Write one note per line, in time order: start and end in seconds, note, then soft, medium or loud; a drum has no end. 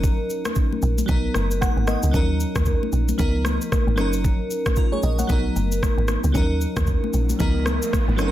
0.00 0.16 F#1 loud
0.00 1.05 F#3 medium
0.00 1.06 C#4 medium
0.00 1.06 D#4 medium
0.00 1.07 A#4 medium
0.00 kick loud
0.00 low conga medium
0.00 shaker medium
0.30 shaker medium
0.45 cross-stick loud
0.45 high conga medium
0.45 shaker medium
0.55 kick loud
0.55 shaker medium
0.72 high conga medium
0.82 1.02 A#1 loud
0.82 shaker medium
0.98 high conga medium
0.98 shaker medium
1.06 1.28 B1 loud
1.06 2.10 F#3 medium
1.06 2.11 B3 medium
1.06 2.12 D#4 medium
1.06 kick loud
1.06 low conga medium
1.06 shaker medium
1.11 2.13 A#4 medium
1.34 1.66 F#1 medium
1.34 cross-stick medium
1.34 high conga medium
1.34 shaker medium
1.51 shaker medium
1.61 1.86 F#5 medium
1.61 kick medium
1.61 cross-stick medium
1.61 high conga medium
1.61 shaker medium
1.77 1.96 G#1 medium
1.77 high conga medium
1.87 2.12 D#5 medium
1.87 cross-stick medium
1.87 high conga medium
1.87 shaker medium
2.03 2.11 C#2 loud
2.03 shaker medium
2.11 2.45 D#2 loud
2.11 3.16 F#3 medium
2.11 3.17 C#4 medium
2.11 3.18 D#4 medium
2.11 kick loud
2.11 low conga medium
2.11 shaker medium
2.16 3.18 A#4 medium
2.40 shaker medium
2.56 2.75 D#2 loud
2.56 kick medium
2.56 cross-stick loud
2.56 high conga medium
2.56 shaker medium
2.66 kick loud
2.66 shaker medium
2.83 high conga medium
2.92 3.12 A#1 medium
2.92 shaker medium
3.08 high conga medium
3.08 shaker medium
3.18 3.59 C#2 loud
3.18 3.97 F3 medium
3.18 3.98 B3 medium
3.18 3.98 D#4 medium
3.18 3.99 A#4 medium
3.18 kick loud
3.18 low conga medium
3.18 shaker medium
3.45 cross-stick medium
3.45 high conga medium
3.45 shaker medium
3.61 shaker medium
3.72 kick medium
3.72 cross-stick medium
3.72 high conga medium
3.72 shaker medium
3.87 4.00 G#1 loud
3.87 high conga medium
3.96 4.37 F#1 loud
3.96 5.26 F#3 medium
3.96 5.27 C#4 medium
3.96 5.28 D#4 medium
3.96 cross-stick medium
3.96 high conga medium
3.96 shaker medium
4.01 4.76 A#4 medium
4.13 shaker medium
4.25 kick loud
4.25 low conga medium
4.25 shaker medium
4.51 shaker medium
4.66 kick medium
4.66 cross-stick loud
4.66 high conga medium
4.66 shaker medium
4.76 4.92 F4 medium
4.76 4.92 A#4 medium
4.76 kick loud
4.76 shaker medium
4.92 5.03 G#4 medium
4.92 5.03 C#5 medium
4.92 high conga medium
5.03 5.23 A#1 medium
5.03 5.18 A#4 medium
5.03 5.18 D#5 medium
5.03 shaker medium
5.19 5.44 C#5 medium
5.19 5.44 F#5 medium
5.19 high conga medium
5.19 shaker medium
5.27 5.49 B1 loud
5.27 6.31 F#3 medium
5.27 6.33 B3 medium
5.27 6.33 D#4 medium
5.27 kick loud
5.27 low conga medium
5.27 shaker medium
5.32 6.34 A#4 medium
5.56 5.87 F#1 medium
5.56 high conga medium
5.56 shaker medium
5.72 shaker medium
5.82 kick medium
5.82 cross-stick medium
5.82 high conga medium
5.82 shaker medium
5.98 6.17 G#1 medium
5.98 high conga medium
6.08 cross-stick medium
6.08 high conga medium
6.08 shaker medium
6.24 6.32 C#2 loud
6.24 shaker medium
6.32 6.66 D#2 loud
6.32 7.37 F#3 medium
6.32 7.38 C#4 medium
6.32 7.39 D#4 medium
6.32 kick loud
6.32 riser medium
6.32 low conga medium
6.32 shaker medium
6.37 7.39 A#4 medium
6.61 shaker medium
6.77 6.96 D#2 loud
6.77 kick medium
6.77 cross-stick loud
6.77 high conga medium
6.77 shaker medium
6.87 kick loud
6.87 shaker medium
7.04 high conga medium
7.13 7.33 A#1 medium
7.13 shaker medium
7.29 high conga medium
7.29 shaker medium
7.39 7.79 C#2 loud
7.39 8.19 F3 medium
7.39 8.19 B3 medium
7.39 8.19 D#4 medium
7.39 8.20 A#4 medium
7.39 kick loud
7.39 low conga medium
7.39 shaker medium
7.66 cross-stick medium
7.66 high conga medium
7.66 shaker medium
7.82 shaker medium
7.93 kick medium
7.93 cross-stick medium
7.93 high conga medium
7.93 shaker medium
8.08 8.21 G#1 loud
8.08 high conga medium
8.16 8.32 F#1 loud
8.16 8.32 F#3 medium
8.16 8.32 C#4 medium
8.16 8.32 D#4 medium
8.16 cross-stick medium
8.16 high conga medium
8.16 shaker medium
8.21 8.28 A4 medium
8.28 8.32 A#4 medium